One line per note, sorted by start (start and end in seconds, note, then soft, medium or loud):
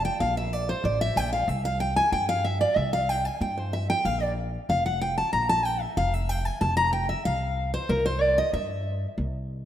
0.05 0.20 G5 loud
0.20 0.71 A#1 loud
0.20 0.36 F5 loud
0.37 0.53 E5 loud
0.53 0.68 D5 medium
0.69 0.84 C5 medium
0.84 1.11 A1 medium
0.84 1.00 D5 loud
1.01 1.17 E5 loud
1.16 1.43 A#1 medium
1.16 1.32 G5 loud
1.33 1.49 F5 loud
1.48 1.99 C2 loud
1.48 1.64 E5 loud
1.65 1.80 F5 loud
1.80 1.96 G5 loud
1.96 2.12 G#5 loud
2.12 2.63 G2 medium
2.12 2.28 G5 loud
2.29 2.44 F5 loud
2.44 2.60 E5 medium
2.61 2.77 D5 loud
2.76 3.27 C2 medium
2.76 2.92 E5 medium
2.93 3.09 F5 loud
3.09 3.25 G5 medium
3.25 3.40 G#5 loud
3.41 3.92 G2 medium
3.41 3.57 G5 medium
3.58 3.73 C5 medium
3.73 3.89 E5 medium
3.90 4.05 G5 loud
4.05 4.56 A#1 medium
4.05 4.22 F5 medium
4.22 4.31 D5 loud
4.69 5.20 F1 medium
4.69 4.85 F5 loud
4.86 5.01 F#5 loud
5.01 5.17 G5 loud
5.18 5.32 A5 loud
5.33 5.84 A#1 medium
5.33 5.49 A#5 loud
5.49 5.65 A5 loud
5.65 5.81 G5 medium
5.81 5.97 E5 medium
5.97 6.48 F1 medium
5.97 6.14 F5 loud
6.14 6.29 E5 loud
6.29 6.45 G5 loud
6.45 6.60 G#5 loud
6.61 7.12 F1 loud
6.61 6.76 A5 loud
6.77 6.92 A#5 loud
6.93 7.09 G5 loud
7.09 7.25 E5 medium
7.25 7.76 C2 medium
7.25 7.70 F5 loud
7.74 7.89 C5 loud
7.89 8.40 C2 loud
7.89 8.05 A#4 medium
8.06 8.21 C5 loud
8.21 8.37 D5 loud
8.38 8.53 D#5 loud
8.53 9.04 G2 medium
8.53 9.06 E5 medium
9.18 9.65 C2 medium